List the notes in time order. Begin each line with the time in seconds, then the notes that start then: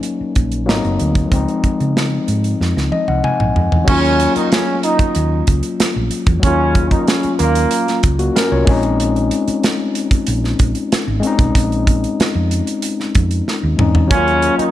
Already playing: F#3 A#3 C#4 D#4
0.03 closed hi-hat
0.21 muted fingered electric bass stroke
0.35 A#1, kick, closed hi-hat
0.52 closed hi-hat
0.66 G#1 F#3 A#3 B3 D#4, snare
0.74 C4
0.85 F#1, closed hi-hat
0.99 D2, closed hi-hat
1.15 kick, closed hi-hat
1.28 C#2 F3 G#3, kick, closed hi-hat
1.33 C4 D#4
1.48 closed hi-hat
1.64 muted fingered electric bass stroke, kick, closed hi-hat
1.80 C#3, closed hi-hat
1.97 snare
2.28 G#2, closed hi-hat
2.44 closed hi-hat
2.61 F2, snare
2.77 C#2, snare
2.92 D#5, high tom
3.08 C2 F#5, high tom
3.24 G#5, mid tom
3.40 A#1, mid tom
3.56 F2, floor tom
3.72 E2, floor tom
3.84 D#2 C#3 F#3 A#3 C#4, kick, crash
3.89 C#4 F4
4.05 closed hi-hat
4.20 closed hi-hat
4.36 D#3 D#4, muted fingered electric bass stroke, closed hi-hat
4.52 C#3 C#4, snare, closed hi-hat
4.83 D#3 D#4, closed hi-hat
4.99 kick, closed hi-hat
5.15 D#2, closed hi-hat
5.47 C#2, kick, closed hi-hat
5.63 closed hi-hat
5.80 muted fingered electric bass stroke, snare, closed hi-hat
5.96 A#1
6.11 closed hi-hat
6.26 E2, kick, closed hi-hat
6.40 D#2 C#3 F#3 A#3 C#4, kick, closed hi-hat
6.44 C#4 F4
6.75 kick, closed hi-hat
6.91 D#3 D#4, kick, closed hi-hat
7.07 C#3 C#4, snare, closed hi-hat
7.23 muted fingered electric bass stroke, closed hi-hat
7.39 D#2 A#2 A#3, closed hi-hat
7.55 closed hi-hat
7.71 closed hi-hat
7.88 snare, closed hi-hat
8.03 C#2, kick, closed hi-hat
8.19 A#3 F#4, closed hi-hat
8.36 C#4 A#4, snare, closed hi-hat
8.52 C2 F4 C#5
8.64 A#1 G#3 C4, kick, open hi-hat
8.69 C#4 D#4
8.83 closed hi-hat
9.00 closed hi-hat
9.16 closed hi-hat
9.31 closed hi-hat
9.48 muted fingered electric bass stroke, closed hi-hat
9.64 snare, closed hi-hat
9.95 closed hi-hat
10.11 kick, closed hi-hat
10.27 A#1, closed hi-hat
10.44 snare
10.59 A#1, kick, closed hi-hat
10.75 closed hi-hat
10.92 muted fingered electric bass stroke, snare, closed hi-hat
11.08 G#1
11.20 G#3 C4, closed hi-hat
11.25 C#4 D#4
11.39 B1, kick, closed hi-hat
11.55 A#1, kick, closed hi-hat
11.72 closed hi-hat
11.87 kick, closed hi-hat
12.04 closed hi-hat
12.20 muted fingered electric bass stroke, snare, closed hi-hat
12.35 F2
12.51 closed hi-hat
12.67 closed hi-hat
12.82 closed hi-hat
13.00 snare
13.15 F2, kick, closed hi-hat
13.31 closed hi-hat
13.48 snare
13.63 D#2
13.77 E2 G#3 C4 C#4 D#4, mid tom
13.95 floor tom
14.07 D#2 C#3 F#3 A#3 C#4, kick, closed hi-hat
14.12 C#4 F4
14.28 closed hi-hat
14.42 closed hi-hat
14.58 D#3 D#4, muted fingered electric bass stroke, closed hi-hat